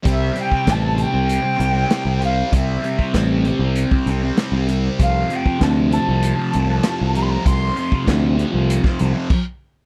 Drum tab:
CC |----------------|----------------|----------------|------------x---|
HH |x-x-x-x-x-x-x-x-|x-x-x-x-x-x-x-x-|x-x-x-x-x-x-x-x-|x-x-x-x-x-x-----|
SD |----o-------o---|----o-------o---|----o-------o---|----o----o------|
BD |o--oo-----------|o--oo----o------|o--oo-----------|o--oo----o--o---|